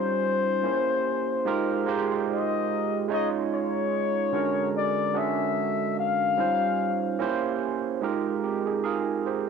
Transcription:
Already playing: G3 C#4 D#4 F4 C5
0.63 A#3 C#4 E4 G4 C5
1.45 G#3 D#4 F4 G4 A#4
1.86 G#3 D#4 F4 G4 C5
2.31 D#5
3.08 G#3 C#4 D#4 F4 C#5
3.13 D#5
3.54 C#5
4.32 D3 G#3 C#4 D4 F#4 A#4
4.77 D5
5.13 D3 G#3 C#4 D4 F#4 G#4
5.18 E5
6.00 F5
6.37 G3 C#4 D#4 F4 C5
7.19 A#3 C#4 E4 G4 C5
8.01 G#3 D#4 F4 G4 A#4
8.44 C4 G4
8.66 D#4 G#4
8.84 F4 G#4 A#4
9.26 G4 C5

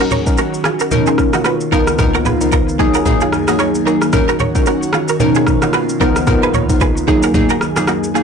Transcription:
Already playing: D#3 C#4 F#4
0.00 F#4 A#4, shaker
0.11 A#4 C#5, low bongo, low conga, shaker
0.26 F#3 C#4 D#4 A#4, kick, shaker
0.37 F#4 A#4, high bongo, shaker
0.54 shaker
0.64 F4 G#4, cross-stick, low bongo, shaker
0.80 F#4 A#4, shaker
0.91 B2 F3 A#3 C#4 D#4 F4 A#4, low conga, shaker
1.06 F4 G#4, shaker
1.18 kick, cross-stick, high bongo, shaker
1.33 D#4 F#4, cross-stick, low bongo, shaker
1.44 F#4 B4, cross-stick, high bongo, shaker
1.61 shaker
1.72 C#2 F3 A#3 B3 D#4 F4 A#4, kick, shaker
1.87 cross-stick, shaker
1.98 C#2 F3 B3 D#4 A#4, kick, cross-stick, low conga, shaker
2.15 F#4 A#4, shaker
2.25 G#4 B4, low bongo, low conga, shaker
2.41 C#2 F3 B3 D#4 A#4, shaker
2.52 F4 A#4, kick, high bongo, shaker
2.69 shaker
2.79 F#2 F#3 A#3 D#4 G#4, kick, low bongo, shaker
2.94 F#4 A#4, shaker
3.05 F#3 A#3 D#4 G#4, kick, low conga, shaker
3.21 F4 G#4, shaker
3.32 cross-stick, high bongo, shaker
3.48 F#3 A#3 D#4 F#4 G#4, cross-stick, low bongo, shaker
3.59 A#4 C#5, cross-stick, high bongo, shaker
3.75 shaker
3.86 F#3 A#3 D#4 F#4 G#4 A#4, shaker
4.02 cross-stick, shaker
4.13 F#3 C#4 D#4 F#4 A#4, kick, cross-stick, low conga, shaker
4.29 F#4 A#4, shaker
4.39 A#4 C#5, low bongo, low conga, shaker
4.55 F#3 C#4 D#4 A#4, kick, shaker
4.66 F#4 A#4, high bongo, shaker
4.83 shaker
4.93 F4 G#4, cross-stick, low bongo, shaker
5.08 F#4 A#4, shaker
5.20 B2 F3 A#3 C#4 D#4 F4 A#4, low conga, shaker
5.35 F4 G#4, shaker
5.47 kick, cross-stick, high bongo, shaker
5.62 D#4 F#4, cross-stick, low bongo, shaker
5.73 F#4 B4, cross-stick, high bongo, shaker
5.89 shaker
6.00 C#2 F3 B3 D#4 F4 A#4, kick, shaker
6.16 cross-stick, shaker
6.27 C#2 F3 B3 D#4 A#4, kick, cross-stick, low conga, shaker
6.43 G#4 B4, shaker
6.54 A#4 C#5, low bongo, low conga, shaker
6.69 C#2 F3 B3 D#4 A#4, kick, shaker
6.80 G#4 B4, kick, high bongo, shaker
6.97 shaker
7.07 F#2 F#3 A#3 D#4 G#4, kick, high bongo, low bongo, shaker
7.23 F#4 A#4, shaker
7.34 F#3 A#3 D#4 G#4, kick, low conga, shaker
7.49 F#4 A#4, shaker
7.61 cross-stick, high bongo, shaker
7.76 F#3 A#3 D#4 F4 G#4, cross-stick, low bongo, shaker
7.87 D#4 F#4, cross-stick, high bongo, shaker
8.04 shaker
8.14 F#3 A#3 D#4 F4 G#4, shaker

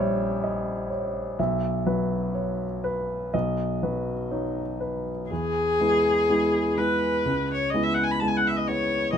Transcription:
Already playing: A#1 E5
0.00 G3 C#5
0.44 D#5
0.90 C#5
1.39 B1 E5
1.86 F#3 B4
2.35 C#5
2.84 B4
3.34 B1 D#5
3.83 F#3 B4
4.31 D#4 C#5
4.80 B4
5.30 E2 G#4
5.80 G#3 B3 E4
6.29 G#3 B3 E4
6.77 G#3 B3 E4 B4
7.25 C#2
7.54 C#5
7.70 D#5
7.74 G#3 B3 E4
7.83 E5
7.94 F#5
8.03 G#5
8.11 B5
8.20 G#3 B3 E4 A5
8.28 G#5
8.37 F#5
8.47 E5
8.56 D#5
8.67 G#3 B3 E4 C#5
9.13 B1 D#5

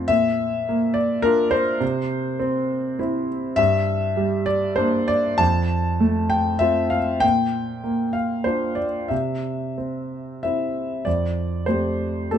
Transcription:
Already playing: F2 A3 C4 F4
0.08 A#2 E5
0.69 A#3
0.94 D5
1.22 D4 F4 A#4
1.51 C5
1.80 C3
2.39 C4
2.99 C4 E4
3.56 G2 E5
4.17 G3
4.46 D5
4.76 A#3 D4 C5
5.08 D5
5.38 F2 A5
6.00 A3
6.30 G5
6.59 C4 F4 E5
6.90 F5
7.20 A#2 G5
7.84 A#3
8.13 F5
8.44 D4 F4 C5
8.75 D5
9.08 C3 E5
9.78 C4
10.43 C4 E4 E5
11.05 F2 D5
11.66 A3 C4 G4 C5
12.31 A3 C4 G4 A4

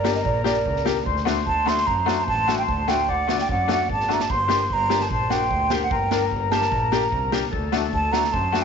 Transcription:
Already playing: A#4 D5
0.04 A#3 D4 G4, snare
0.15 D#5, snare
0.25 A#1 D5, kick
0.44 A#3 D4 G4 D5, snare
0.66 C#2, kick
0.76 snare
0.85 A#3 D4 G4, snare
1.05 D2 C5, kick
1.16 snare
1.25 A3 D4 F#4, snare
1.47 D2 A5, kick
1.66 A3 D4 F#4 C6, snare
1.78 snare
1.87 F#2 A#5, kick
2.06 A3 D4 F#4, snare
2.18 A#5
2.23 A5
2.28 A1, kick
2.47 A3 D4 F#4, snare
2.58 G5
2.67 D2 A5, kick
2.88 A3 D4 F#4 G5, snare
3.09 D2 D5 F#5, kick
3.27 A3 D4 F#4, snare
3.39 G5, snare
3.49 F#2 F#5, kick
3.68 A3 D4 F#4 F#5, snare
3.88 G#1 D5, kick
3.92 A5
4.00 snare
4.08 A3 D4 F#4, snare
4.13 A#5
4.20 A5, snare
4.29 G1 C5 C6, kick
4.48 A#3 D4 G4, snare
4.70 G1 A#5, kick
4.89 A#3 D4 G4, snare
5.00 A5, snare
5.10 A#1 A5, kick
5.30 A#3 D4 F#4 G5, snare
5.50 D2, kick
5.70 A#3 D4 G4, snare
5.83 F#5
5.91 G1 A#4 G5, kick
6.11 A#3 D4 A#4, snare
6.32 G1, kick
6.51 A#3 D4 G4 A5, snare
6.62 snare
6.72 A#1, kick
6.92 A#3 D4 G4 A#5, snare
7.12 C2, kick
7.32 A#3 D4 G4, snare
7.52 D2 A4, kick
7.72 A3 D4 F#4, snare
7.93 D2 A5, kick
8.12 A3 D4 F#4 A#5, snare
8.24 snare
8.33 F#2 C5 A5, kick
8.52 A3 D4 F#4, snare

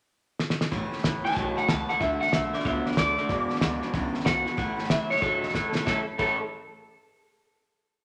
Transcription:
0.39 snare
0.50 snare
0.61 snare
0.71 A1 A2 E3 A3 C#4 E4, kick, snare
0.91 A3 C#4 E4, snare
0.98 E3, snare
1.03 A1 A2 A3 C#4 E4, kick, snare, hi-hat pedal
1.23 A2 E3 A3 C#4 E4 A5, muted upright bass stroke, snare
1.31 A2, snare
1.35 B1 E3 F#3 A3 C#4 E4, kick, snare
1.55 A3 C#4 E4 F#5, snare
1.67 C#2 A2 E3 A3 C#4 E4 A5, kick, snare, hi-hat pedal
1.88 A2 E3 A3 C#4 E4 F#5, muted upright bass stroke, snare
2.00 D2 D3 A3 D4 F#4 E5, kick, snare
2.20 A3 D4 F#4 F#5, muted upright bass stroke, snare
2.27 snare
2.32 B1 D3 A3 D4 F#4 E5, kick, snare, hi-hat pedal
2.53 D3 A3 D4 F#4 D5, muted upright bass stroke, snare
2.60 snare
2.65 C#2 D3 A3 B3 D4 F#4 E5, kick, snare
2.85 A3 D4 F#4 D5, muted upright bass stroke, snare
2.92 snare
2.96 D2 D3 A3 D4 F#4 D5, kick, snare, hi-hat pedal
3.17 D3 A3 D4 F#4, muted upright bass stroke, snare
3.29 E2 B2 E3 G#3 D4 E4, kick, snare
3.49 E3 G#3 D4 E4, snare
3.56 snare
3.60 D2 E2 B2 E3 G#3 D4 E4, kick, snare, hi-hat pedal
3.81 E2 B2 E3 G#3 D4 E4, muted upright bass stroke, snare
3.94 C#2 E2 B2 C#3 E3 G#3 D4 E4, kick, snare
4.13 E3 G#3 D4 E4, muted upright bass stroke, snare
4.20 snare
4.25 B1 E2 B2 E3 G#3 D4 E4 F#5, kick, snare, hi-hat pedal
4.45 E2 B2 E3 G#3 D4 E4, snare
4.57 A1 A2 E3 A3 C#4 E4, kick, snare
4.77 A3 C#4 E4, snare
4.84 E3, snare
4.89 A2 A3 C#4 E4 E5, kick, snare, hi-hat pedal
5.09 A2 E3 A3 C#4 E4 C#5, muted upright bass stroke, snare
5.17 A2, snare
5.21 E1 E3 F#3 A3 C#4 E4 A4, kick, snare
5.41 A3 C#4 E4, snare
5.49 snare
5.53 A2 E3 A3 C#4 E4, kick, snare, hi-hat pedal
5.74 A2 E3 A3 C#4 E4, muted upright bass stroke, snare
5.86 A2 E3 A3 C#4 E4 A4, kick, snare
6.18 A2 E3 A3 C#4 E4 A4, kick, crash

